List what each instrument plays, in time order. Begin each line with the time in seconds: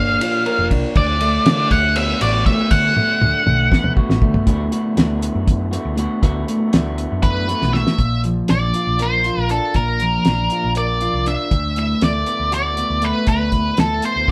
Already playing: picked electric bass G1, clean electric guitar A#2 A#3 D4, lead electric guitar F5
0.21 clean electric guitar F4, ride
0.46 clean electric guitar A#4, ride
0.59 picked electric bass F1
0.71 picked electric bass C2, clean electric guitar D4, kick, ride
0.96 picked electric bass D2, clean electric guitar D2, lead electric guitar D5, kick, ride
1.21 clean electric guitar A3, ride
1.46 picked electric bass D3, clean electric guitar D3, snare, ride
1.71 picked electric bass D2, clean electric guitar A3, lead electric guitar F#5, kick, ride
1.96 clean electric guitar B3, lead electric guitar E5, ride
2.21 picked electric bass A1, clean electric guitar F#4, lead electric guitar D5, ride
2.46 clean electric guitar A3, lead electric guitar E5, kick, snare, ride
2.71 clean electric guitar D2, picked electric bass D3, lead electric guitar F#5, kick, ride
2.96 clean electric guitar A3, high tom
3.21 picked electric bass D2, clean electric guitar D3, high tom
3.46 picked electric bass B1, clean electric guitar A3, mid tom
3.71 clean electric guitar B3, kick, snare
3.84 mid tom
3.97 clean electric guitar F#4, kick
4.09 picked electric bass A1, snare
4.22 picked electric bass D3, clean electric guitar A3, kick
4.34 floor tom
4.46 clean electric guitar D2 A2 D3 A3 B3 F#4, picked electric bass D2, kick, closed hi-hat
4.72 clean electric guitar D3 A3 B3 F#4, closed hi-hat
4.96 clean electric guitar D2 A2 D3 A3 B3 F#4, picked electric bass D2, snare, closed hi-hat
5.22 closed hi-hat
5.35 picked electric bass F#2
5.48 kick, closed hi-hat
5.71 clean electric guitar D3 A3 B3 F#4, closed hi-hat
5.85 picked electric bass D2
5.96 clean electric guitar D3 A3 B3 F#4, closed hi-hat
6.21 clean electric guitar D2 A2 D3 A3 B3 F#4, picked electric bass D2, kick, closed hi-hat
6.47 clean electric guitar D3 A3 B3 F#4, closed hi-hat
6.72 clean electric guitar D2 A2 D3 A3 B3 F#4, picked electric bass D2, snare, closed hi-hat
6.98 closed hi-hat
7.12 picked electric bass F#2
7.23 lead electric guitar B4, kick, closed hi-hat
7.48 clean electric guitar D3 A3 B3 F#4, closed hi-hat
7.62 picked electric bass B1, snare
7.73 clean electric guitar D3 A3 B3 F#4, lead electric guitar E5, snare
7.87 snare
7.98 picked electric bass A#1, clean electric guitar A#2, kick, closed hi-hat
8.24 clean electric guitar F3, closed hi-hat
8.48 picked electric bass A#1, clean electric guitar D4, lead electric guitar D5, snare, closed hi-hat
8.74 clean electric guitar F4, closed hi-hat
8.87 picked electric bass A#1
8.99 clean electric guitar A#4, lead electric guitar C5, snare, closed hi-hat
9.24 clean electric guitar F4, closed hi-hat
9.37 picked electric bass A#1
9.49 clean electric guitar D4, lead electric guitar A4, closed hi-hat
9.74 picked electric bass A#1, clean electric guitar A#2, lead electric guitar A#4, kick, closed hi-hat
10.00 clean electric guitar F3, closed hi-hat
10.25 picked electric bass A#1, clean electric guitar D4, snare, closed hi-hat
10.50 clean electric guitar F4, closed hi-hat
10.64 picked electric bass A#1
10.75 clean electric guitar A#4, lead electric guitar D5, closed hi-hat
11.01 clean electric guitar F4, closed hi-hat
11.14 picked electric bass C2
11.26 clean electric guitar D4, lead electric guitar E5, closed hi-hat
11.51 picked electric bass D2, clean electric guitar D2, kick, closed hi-hat
11.76 clean electric guitar A2, lead electric guitar E5, closed hi-hat
12.01 picked electric bass D2, clean electric guitar A3, lead electric guitar D5, snare, closed hi-hat
12.26 clean electric guitar B3, closed hi-hat
12.40 picked electric bass D2
12.52 clean electric guitar F#4, lead electric guitar D5, closed hi-hat
12.77 clean electric guitar B3, closed hi-hat
12.90 picked electric bass D2
13.02 clean electric guitar A3, lead electric guitar B4, closed hi-hat
13.27 clean electric guitar D2, picked electric bass D2, lead electric guitar B4, kick, closed hi-hat
13.52 clean electric guitar A2, kick, closed hi-hat
13.77 picked electric bass D2, clean electric guitar A3, lead electric guitar A4, snare, closed hi-hat
14.02 clean electric guitar B3, lead electric guitar C5, closed hi-hat
14.16 picked electric bass D2
14.28 kick